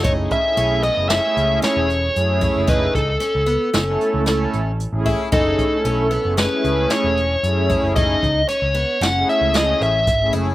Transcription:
<<
  \new Staff \with { instrumentName = "Lead electric guitar" } { \time 5/4 \key fis \dorian \tempo 4 = 114 cis''8 e''4 dis''8 e''4 cis''2 | b'8 a'2. r4. | a'2 b'4 cis''2 | dis''4 cis''4 fis''8 e''8 dis''8 e''4 r8 | }
  \new Staff \with { instrumentName = "Analog synth pad" } { \time 5/4 \key fis \dorian <a cis' e' gis'>16 <a cis' e' gis'>16 r16 <a cis' e' gis'>8. r16 <a cis' e' gis'>16 <a cis' e' gis'>16 <a cis' e' gis'>4~ <a cis' e' gis'>16 r8 <a cis' e' gis'>4~ | <a cis' e' gis'>16 r2 <a cis' e' a'>4~ <a cis' e' a'>16 r8. <a cis' e' gis'>8 r16 | <a cis' e' gis'>16 <a cis' e' gis'>16 r16 <a cis' e' a'>8. r16 <a cis' e' gis'>16 <a cis' e' gis'>16 <a cis' e' gis'>4~ <a cis' e' gis'>16 r8 <a cis' e' gis'>4~ | <a cis' e' gis'>16 r2 <a cis' e' gis'>4~ <a cis' e' gis'>16 r8. <a cis' e' gis'>8 r16 | }
  \new Staff \with { instrumentName = "Twelve-string acoustic guitar" } { \time 5/4 \key fis \dorian dis'4 cis'8 b8 cis'4 cis'4 r8 e'8 | dis'4 cis'8 b8 cis'4 cis'4 r8 e'8 | dis'4 cis'8 b8 cis'4 cis'4 r8 e'8 | dis'4 cis'8 b8 cis'4 cis'4 r8 e'8 | }
  \new Staff \with { instrumentName = "Picked electric bass" } { \clef bass \time 5/4 \key fis \dorian fis,,8 r8 b,,8. fis,,8 r16 cis,8 r16 e,,8. fis,8. fis,,16~ | fis,,8 cis,8 r16 cis,8 r16 fis,,8 r16 cis,8. a,,8. a,,8 r16 | fis,,8 r8 b,,8. fis,,8 r16 cis,8 r16 e,,8. fis,8. fis,,16~ | fis,,8 cis,8 r16 cis,8 r16 fis,,8 r16 cis,8. a,,8 gis,,8 fis,,8 | }
  \new DrumStaff \with { instrumentName = "Drums" } \drummode { \time 5/4 <hh bd>8 <hh bd>8 hh8 hh8 <hh sn>8 hh8 <hh sn>8 hh8 hh8 <hh bd>8 | <hh bd>8 <hh bd>8 hh8 hh8 <hh sn>8 hh8 <hh sn>8 hh8 hh8 <hh bd>8 | <hh bd>8 <hh bd>8 hh8 hh8 <hh sn>8 hh8 <hh sn>8 hh8 hh8 <hh bd>8 | <hh bd>8 <hh bd>8 hh8 hh8 <hh sn>8 hh8 <hh sn>8 hh8 <hh bd sn>8 hh8 | }
>>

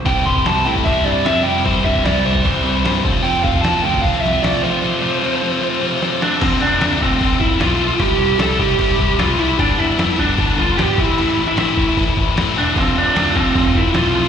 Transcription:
<<
  \new Staff \with { instrumentName = "Lead electric guitar" } { \time 4/4 \key f \lydian \tempo 4 = 151 g''8 c'''8 a''8 g''8 e''8 d''8 e''8 g''8 | c''8 e''8 d''8 c''2 r8 | g''8 f''8 a''8 g''8 f''8 e''8 d''8 c''8~ | c''2.~ c''8 d'8 |
c'8 d'4 c'4 e'8 f'4 | g'4 a'8 g'4. f'8 e'8 | d'8 e'4 d'4 f'8 g'8 e'8~ | e'8. e'16 e'4. r4 d'8 |
c'8 d'4 c'4 e'8 f'4 | }
  \new Staff \with { instrumentName = "Distorted electric guitar" } { \time 4/4 \key f \lydian <c e g c' e'>8 <c e g c' e'>8 <c e g c' e'>8 <c e g c' e'>8 <c e g c' e'>8 <c e g c' e'>8 <c e g c' e'>8 <c e g c' e'>8 | <c e g c' e'>8 <c e g c' e'>8 <c e g c' e'>8 <c e g c' e'>8 <c e g c' e'>8 <c e g c' e'>8 <c e g c' e'>8 <f a c' f'>8 | <f a c' f'>8 <f a c' f'>8 <f a c' f'>8 <f a c' f'>8 <f a c' f'>8 <f a c' f'>8 <f a c' f'>8 <f a c' f'>8 | <f a c' f'>8 <f a c' f'>8 <f a c' f'>8 <f a c' f'>8 <f a c' f'>8 <f a c' f'>8 <f a c' f'>8 <f a c' f'>8 |
<f, c f a c'>4 <f, c f a c'>8 <f, c f a c'>8 <f, c f a c'>4 <f, c f a c'>8 <f, c f a c'>8 | <c g c' e'>4 <c g c' e'>8 <c g c' e'>8 <c g c' e'>4 <c g c' e'>8 <c g c' e'>8 | <g, d g b d'>4 <g, d g b d'>8 <g, d g b d'>8 <g, d g b d'>4 <g, d g b d'>8 <a, e a c' e'>8 | <a, e a c' e'>4 <a, e a c' e'>8 <a, e a c' e'>8 <a, e a c' e'>4 <a, e a c' e'>8 <a, e a c' e'>8 |
<f a c' f'>4 <f a c' f'>8 <f a c' f'>8 <f a c' f'>4 <f a c' f'>8 <f a c' f'>8 | }
  \new Staff \with { instrumentName = "Distorted electric guitar" } { \clef bass \time 4/4 \key f \lydian <c g c'>8 <c g c'>8 <c g c'>8 <c g c'>8 <c g c'>8 <c g c'>8 <c g c'>8 <c g c'>8 | <c g c'>8 <c g c'>8 <c g c'>8 <c g c'>8 <c g c'>8 <c g c'>8 <c g c'>8 <f, c f>8 | <f, c f>8 <f, c f>8 <f, c f>8 <f, c f>8 <f, c f>8 <f, c f>8 <f, c f>8 <f, c f>8 | <f, c f>8 <f, c f>8 <f, c f>8 <f, c f>8 <f, c f>8 <f, c f>8 <f, c f>8 <f, c f>8 |
r1 | r1 | r1 | r1 |
<f, c f>4 <f, c f>8 <f, c f>8 <f, c f>4 <f, c f>8 <f, c f>8 | }
  \new Staff \with { instrumentName = "Picked electric bass" } { \clef bass \time 4/4 \key f \lydian c,8 c,8 c,8 a,8 c,8 g,8 f,4 | c,8 g,8 c,8 c,8 c,8 c,8 g,8 f,,8 | f,,8 f,,8 f,,8 d,8 f,,8 c,8 a,,4 | r1 |
f,,8 f,,8 d,8 f,,8 f,,4 b,,4 | c,8 c,8 c,8 c,8 c,8 c,8 c,8 c,8 | g,,8 g,,8 f,8 g,,8 g,,4 aes,,8 a,,8 | a,,8 a,,8 a,,8 a,,8 a,,8 a,,8 a,,8 e,,8 |
f,,8 f,,8 d,8 f,,8 f,,4 b,,4 | }
  \new DrumStaff \with { instrumentName = "Drums" } \drummode { \time 4/4 <hho bd>8 bd16 bd16 <hho sn>8. bd16 <hho bd>4 <hho sn>4 | <hho bd>8 bd16 bd16 <hho sn>8. bd16 <hho bd>4 <hho sn>8 bd8 | hho8 bd16 bd16 <hho sn>8. bd16 <hho bd>4 <hho sn>4 | r4 r4 r4 sn8 sn8 |
<cymc bd>4 <cymc sn>8 bd8 <cymc bd>8 bd8 <cymc sn>4 | <cymc bd>4 <cymc sn>8 bd8 <cymc bd>8 bd8 <cymc sn>4 | <cymc bd>4 <cymc sn>8 bd8 <cymc bd>8 bd8 <cymc sn>8 bd8 | cymc4 <cymc sn>8 bd8 <cymc bd>8 bd8 <cymc sn>4 |
<cymc bd>4 <cymc sn>8 bd8 <cymc bd>8 bd8 <cymc sn>4 | }
>>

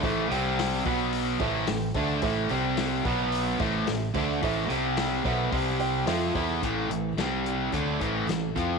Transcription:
<<
  \new Staff \with { instrumentName = "Upright piano" } { \time 4/4 \key a \minor \tempo 4 = 109 << { r2. g''8 a''8 | r1 | r1 | r1 | } \\ { <a' c'' e''>8 <g' c'' g''>4 <fis' b' fis''>4 <a' c'' e''>4 <a' c'' e''>8 | <a' c'' e''>8 <g' c'' g''>4 <fis' b' fis''>4 <a' c'' e''>4 <a' c'' e''>8 | <a' c'' e''>8 <g' c'' g''>4 <a' c'' e''>8 <g' c'' g''>8 <g' c'' g''>8 <a' c'' e''>8 <a' c'' e''>8 | r1 | } >> }
  \new Staff \with { instrumentName = "Steel-string acoustic guitar" } { \time 4/4 \key a \minor r1 | r1 | r1 | <a, e a c' e' a'>8 <a c' e' a'>8 <c g c' g'>8 <g c' g'>8 <a, a c' e' a'>8 <c' e' a'>8 <a c' e' a'>8 <c' e' a'>8 | }
  \new Staff \with { instrumentName = "Distorted electric guitar" } { \clef bass \time 4/4 \key a \minor <a, e a>8 <c g c'>4 <b, fis b>4 <a, e a>8 <a, e>8 <d a d'>8 | <a, e a>8 <c g c'>4 <b, fis b>4 <a, e a>8 <a, e>8 <d a d'>8 | <a, e a>8 <c g c'>4 <b, fis b>8 <c g c'>4 <f c' f'>8 <e b e'>8 | <a, e a>8 <a, e>8 <c g c'>4 <d a d'>8 <a, e a>8 <a, e>8 <f c' f'>8 | }
  \new Staff \with { instrumentName = "Distorted electric guitar" } { \clef bass \time 4/4 \key a \minor <a, e a>8 <c g c'>4 <b, fis b>4 <a, e a>8 <a, e>8 <d a d'>8 | <a, e a>8 <c g c'>4 <b, fis b>4 <a, e a>8 <a, e>8 <d a d'>8 | <a, e a>8 <c g c'>4 <b, fis b>8 <c g c'>4 <f c' f'>8 <e b e'>8 | <a, e a>8 <a, e>8 <c g c'>4 <d a d'>8 <a, e a>8 <a, e>8 <f c' f'>8 | }
  \new Staff \with { instrumentName = "Fingered electric bass" } { \clef bass \time 4/4 \key a \minor a,,8 c,4 b,,4 a,,8 a,,8 d,8 | a,,8 c,4 b,,4 a,,8 a,,8 d,8 | a,,8 c,4 b,,8 c,4 f,8 e,8 | a,,8 a,,8 c,4 d,8 a,,8 a,,8 f,8 | }
  \new DrumStaff \with { instrumentName = "Drums" } \drummode { \time 4/4 <hho bd>8 hho8 <hho sn>8 <hho bd>8 hho8 <hho bd>8 <hho sn>8 <hho bd>8 | <hho bd>8 hho8 <hho sn>8 <hho bd>8 hho8 <hho bd>8 <hho sn>8 <hho bd>8 | <hho bd>8 hho8 <hho sn>8 <hho bd>8 <hho bd>8 hho8 <hho sn>8 <hho bd>8 | <hh bd>8 hh8 <hh sn>8 hh8 <hh bd>8 <hh bd>8 <hh sn>8 <hh bd>8 | }
>>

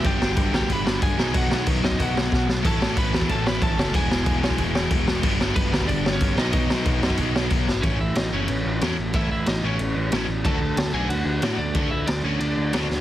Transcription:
<<
  \new Staff \with { instrumentName = "Lead electric guitar" } { \time 4/4 \key a \lydian \tempo 4 = 185 <g' g''>4. <g' g''>8 <b' b''>4 <gis' gis''>4 | <fis' fis''>4 r8 <dis' dis''>8 <fis' fis''>4. r8 | <a' a''>4 <b' b''>4 <a' a''>8 <b' b''>8 <a' a''>4 | <gis' gis''>2.~ <gis' gis''>8 r8 |
r4 <b b'>4 <d' d''>8. <cis' cis''>8. <dis' dis''>8 | <dis' dis''>2. r4 | <cis' cis''>8 <e' e''>8 <dis' dis''>8 <cis' cis''>2 r8 | <e' e''>8 <e' e''>8 <dis' dis''>8 <cis' cis''>2 r8 |
<a' a''>4. <gis' gis''>8 <fis' fis''>4. <d' d''>8~ | <d' d''>8 <e' e''>8 <d' d''>8 <cis' cis''>8 <d' d''>4. r8 | }
  \new Staff \with { instrumentName = "Distorted electric guitar" } { \time 4/4 \key a \lydian <g, d g b d'>2.~ <g, d g b d'>8 <b, dis fis b dis'>8~ | <b, dis fis b dis'>2.~ <b, dis fis b dis'>8 r8 | <a, e a cis' e'>1 | <e gis b e'>1 |
<g, d g b d'>2.~ <g, d g b d'>8 <b, fis b dis'>8~ | <b, fis b dis'>2.~ <b, fis b dis'>8 r8 | <a, e a cis' e'>8 r4 <a, e a cis' e'>8 r4 <a, e a cis' e'>8 r8 | <a, e a cis' e'>8 r4 <a, e a cis' e'>8 r4 <a, e a cis' e'>8 r8 |
<d a d' fis'>8 r4 <d a d' fis'>8 r4 <d a d' fis'>8 r8 | <d a d' fis'>8 r4 <d a d' fis'>8 r4 <d a d' fis'>8 r8 | }
  \new Staff \with { instrumentName = "Overdriven electric guitar" } { \clef bass \time 4/4 \key a \lydian <g, d g>8 <g, d g>8 <g, d g>8 <g, d g>8 <g, d g>8 <g, d g>8 <g, d g>8 <b, fis b>8 | <b, fis b>8 <b, fis b>8 <b, fis b>8 <b, fis b>8 <b, fis b>8 <b, fis b>8 <b, fis b>8 <b, fis b>8 | <a, e a>8 <a, e a>8 <a, e a>8 <a, e a>8 <a, e a>8 <a, e a>8 <a, e a>8 <a, e a>8 | <e, b, e>8 <e, b, e>8 <e, b, e>8 <e, b, e>8 <e, b, e>8 <e, b, e>8 <e, b, e>8 <e, b, e>8 |
<g, d g>8 <g, d g>8 <g, d g>8 <g, d g>8 <g, d g>8 <g, d g>8 <g, d g>8 <b, fis b>8 | <b, fis b>8 <b, fis b>8 <b, fis b>8 <b, fis b>8 <b, fis b>8 <b, fis b>8 <b, fis b>8 <b, fis b>8 | <a, e a>4. <a, e a>2~ <a, e a>8 | <a, e a>4. <a, e a>2~ <a, e a>8 |
<d a d'>4. <d a d'>2~ <d a d'>8 | <d a d'>4. <d a d'>2~ <d a d'>8 | }
  \new Staff \with { instrumentName = "Picked electric bass" } { \clef bass \time 4/4 \key a \lydian g,,8 g,,8 g,,8 d,8 g,,4 g,,8 b,,8 | b,,8 b,,8 b,,8 fis,8 b,,4 b,,8 b,,8 | a,,8 a,,8 a,,8 e,8 a,,4 a,,8 fis,,8 | e,,8 e,,8 e,,8 b,,8 e,,4 e,,8 e,,8 |
g,,8 g,,8 g,,8 d,8 g,,4 g,,8 b,,8 | b,,8 b,,8 b,,8 fis,8 b,,4 b,,8 gis,,8 | a,,8 a,,8 a,,8 fis,,8 a,,8 a,,8 e,8 a,,8 | a,,8 a,,8 a,,8 a,,8 a,,8 a,,8 a,,8 a,,8 |
d,8 d,8 d,8 b,,8 d,8 d,8 a,8 d,8 | d,8 d,8 d,8 d,8 d,8 d,8 d,8 d,8 | }
  \new DrumStaff \with { instrumentName = "Drums" } \drummode { \time 4/4 <cymc bd>8 sn8 <cymc bd>8 sn16 bd16 <cymc bd>8 sn8 <cymc bd>8 sn8 | <cymc bd>8 sn8 <cymc bd>8 sn16 bd16 <cymc bd>8 sn8 <bd sn>8 sn8 | <cymc bd>8 sn8 <cymc bd>8 sn16 bd16 <cymc bd>8 sn8 <cymc bd>8 sn8 | <cymc bd>8 sn8 <cymc bd>8 sn16 bd16 <cymc bd>8 sn8 <cymc bd>8 sn8 |
<cymc bd>8 sn8 <cymc bd>8 sn16 bd16 <cymc bd>8 sn8 <cymc bd>8 sn8 | <cymc bd>8 sn8 <cymc bd>8 sn16 bd16 <cymc bd>8 sn8 <cymc bd>8 sn8 | <bd cymr>4 <cymr sn>4 cymr4 <cymr sn>4 | <bd cymr>4 <cymr sn>4 cymr4 <cymr sn>4 |
<bd cymr>4 <cymr sn>4 cymr4 <cymr sn>4 | <bd cymr>4 <cymr sn>4 cymr4 <cymr sn>8 sn8 | }
>>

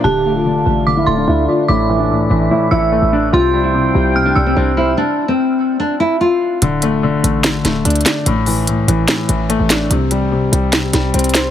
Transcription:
<<
  \new Staff \with { instrumentName = "Synth bell" } { \time 4/4 \key d \minor \tempo 4 = 146 a''2 d'''8 c'''8 r4 | d'''2~ d'''8 e'''4. | c'''2 f'''8 e'''8 r4 | r1 |
r1 | r1 | r1 | }
  \new Staff \with { instrumentName = "Woodwind section" } { \time 4/4 \key d \minor << { f''1 | e''1 | g''1 | r1 |
r1 | r1 | r1 | } \\ { <d' a'>1~ | <d' a'>1 | <f c''>1 | r1 |
r1 | r1 | r1 | } >> }
  \new Staff \with { instrumentName = "Nylon-string guitar" } { \time 4/4 \key d \minor g'8. f'4. e'8 d'16 e'8 f'8 | e'8. d'4~ d'16 e'8 e'4 d'8 | f'8. e'4. d'8 c'16 d'8 e'8 | d'8. c'4~ c'16 d'8 e'8 f'4 |
r1 | r1 | r1 | }
  \new Staff \with { instrumentName = "Grand piano" } { \clef bass \time 4/4 \key d \minor d8 a8 d8 a8 d8 a8 d'8 d''8 | a,8 e8 a,8 e8 a,8 e8 a8 d'8 | c8 g8 c8 g8 c8 g8 c'8 c''8 | r1 |
d8 a8 d8 a8 d8 a8 d'8 d''8 | a,8 e8 a,8 e8 a,8 e8 a8 d'8 | c8 g8 c8 g8 c8 g8 c'8 c''8 | }
  \new Staff \with { instrumentName = "808-style bass" } { \clef bass \time 4/4 \key d \minor d,,4. a,,4 d,,8 d,8 r8 | a,,4 c,8 a,,8 r8 a,,8. a,,8. | c,4. c,4 c,8 c,4 | r1 |
d,,4. a,,4 d,,8 d,8 r8 | a,,4 c,8 a,,8 r8 a,,8. a,,8. | c,4. c,4 c,8 c,4 | }
  \new DrumStaff \with { instrumentName = "Drums" } \drummode { \time 4/4 r4 r4 r4 r4 | r4 r4 r4 r4 | r4 r4 r4 r4 | r4 r4 r4 r4 |
hh8 hh8 r8 hh8 <hc hh sn>8 <hh sn>8 hh32 hh32 hh32 hh32 <hc hh sn>8 | hh8 hho8 hh8 hh8 <hc hh sn>8 hh8 hh8 <hc hh sn>8 | hh8 hh8 r8 hh8 <hc hh sn>8 <hh sn>8 hh32 hh32 hh32 hh32 <hc hh sn>8 | }
>>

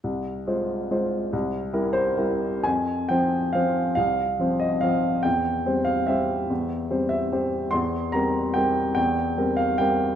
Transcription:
\new Staff \with { instrumentName = "Upright piano" } { \time 3/4 \key f \minor \tempo 4 = 143 << { r2. | r4. c''4. | aes''4 g''4 f''4 | f''4. ees''8 f''4 |
g''4. f''8 e''4~ | e''4 r8 e''4. | c'''4 bes''4 g''4 | g''4. f''8 g''4 | } \\ { c,4 <aes f' c''>4 <aes f' c''>4 | c,4 <g e' bes'>4 <g e' bes'>4 | f,4 <f c' c''>4 <f c' c''>4 | c,4 <f c' c''>4 <f c' c''>4 |
e,4 <g c' c''>4 <g c' c''>4 | e,4 <g c' c''>4 <g c' c''>4 | e,4 <g c' bes'>4 <g c' bes'>4 | e,4 <g c' bes'>4 <g c' bes'>4 | } >> }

